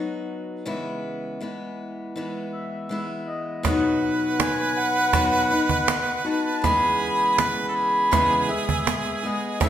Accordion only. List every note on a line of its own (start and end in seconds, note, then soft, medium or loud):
2.52 3.29 E5 medium
3.27 3.98 D#5 medium
4.02 4.40 F#5 medium
4.40 4.78 G#5 medium
4.77 6.22 F#5 loud
6.26 6.64 A5 medium
6.64 8.56 B5 loud
8.50 9.26 E5 loud
9.25 9.59 D#5 medium
9.62 9.69 E5 loud